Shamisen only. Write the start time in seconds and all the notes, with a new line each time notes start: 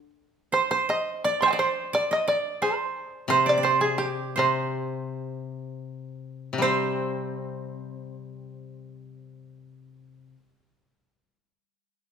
0.54 C5
0.71 C5
0.90 D#5
1.24 D5
1.41 C5 C6
1.46 G5 G#5
1.50 D5 D#5
1.59 C5
1.95 D5
2.13 D#5
2.28 D5
2.62 C5
3.30 C5
3.49 D5
3.64 C5
3.81 G#4
3.98 G4
4.39 C5
6.62 C5